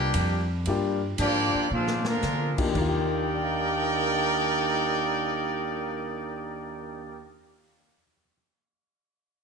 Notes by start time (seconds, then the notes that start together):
Already playing: C2 G2 A#2 G3 A#3 D4 G4
0.14 F2, hi-hat pedal, ride
0.66 G2 G3 A#3 D4 F4 G4, ride
1.18 G#2 F3 A#3 D4 F4 G4 D5, hi-hat pedal, ride
1.54 muted upright bass stroke
1.71 G#2 A#2 D3 F3 G#3 C4 D4 F4
1.88 snare
2.05 D3 F3 G#3 A#3 D4 F4 A#4, snare
2.22 D3, snare, hi-hat pedal
2.57 A#3 D4 D#4 F4 G4, muted upright bass stroke, kick, crash
2.63 D#2
2.69 D#3
2.75 D#2 D#3 A#3 D4 D#4 G4 A#4 D5 G5, kick, crash
2.81 F4
2.88 G4
3.26 A#4
3.34 D5
3.43 F5
3.52 A#5
3.61 D6
3.72 F6
3.83 A#6